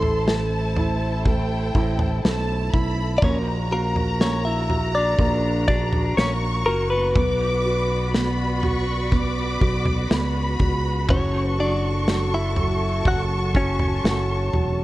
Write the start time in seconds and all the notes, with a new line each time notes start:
Already playing: A1 A3 E4 A4 C5 A5 C6
0.03 floor tom
0.27 A3 A5, snare
0.76 E4, floor tom
1.25 A3 G5, kick, floor tom
1.75 A1 E4, kick
1.99 floor tom
2.24 B1 A3 A5, snare
2.73 B1 E4 B5, kick
3.18 D5
3.22 A#1 A#3 C#4 F#4 A#4 C#5 A#5, kick, floor tom
3.72 A#3 F#4 A#4
3.96 floor tom
4.20 A#3 C#4 C#5, snare
4.45 E4 E5
4.69 F#4, floor tom
4.95 D4 D5
5.19 A#1 A#3, kick, floor tom
5.68 D4 F#4 D5, kick
5.93 floor tom
6.17 A#1 A#3 C#4 C#5 C#6, snare
6.66 F#1 A#3 F#4 A#4
6.90 B3 B4
7.15 B1 B3 B4 D5 B5 D6, kick, floor tom
7.66 F#4
8.14 B3 B5, snare
8.63 F#4 C#6, floor tom
9.12 B3 D6, kick, floor tom
9.61 B1 F#4, kick
9.86 floor tom
10.11 C#2 B3 B5, snare
10.60 C#2 F#4, kick, floor tom
11.09 F#1 F#3 C#4 A4 C#5 A5 C#6, kick, floor tom
11.58 F#3 D4 D5
12.08 F#3, snare
12.34 E4 E5
12.56 F#3, floor tom
13.05 F#1 F#3 F#4 F#5, kick, floor tom
13.55 F#3 C#4 C#5, kick
13.79 floor tom
14.04 F#1 F#3, snare
14.53 E1 F#3, floor tom